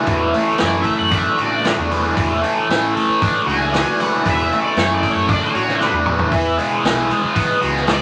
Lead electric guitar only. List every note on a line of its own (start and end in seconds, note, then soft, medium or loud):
0.65 0.70 D5 medium
0.81 0.98 E5 loud
0.98 1.15 F#5 medium
1.15 1.41 E5 medium
1.41 1.64 D5 medium
3.47 4.00 G#5 loud
4.00 4.27 F#5 medium
4.30 4.42 E5 medium
4.43 4.61 E5 medium
4.61 4.77 D5 medium
4.77 4.93 C#5 medium
4.94 5.11 D5 medium
5.11 5.27 C#5 medium
5.27 5.44 D5 medium
5.44 5.94 C#5 medium
7.90 8.02 D5 medium